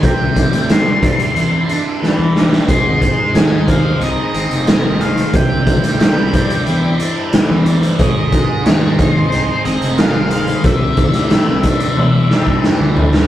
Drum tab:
HH |x-xxx-xxx-x-----|x-x-x-x-x-xxx-xx|x-xxx-xxx-x-x-xx|x-x-x-x-x-xxx-xx|
SD |----o-------o-oo|----o-------o---|---oo-------o---|----o-------o---|
T1 |----------------|----------------|----------------|----------------|
FT |----------------|----------------|----------------|----------------|
BD |o-o---o---------|o-o---o---------|o-o---o---------|o-o---o---------|

HH |x-xxx-xx--------|
SD |---oo-----o-o--o|
T1 |--------o-------|
FT |--------------o-|
BD |o-o---o----o----|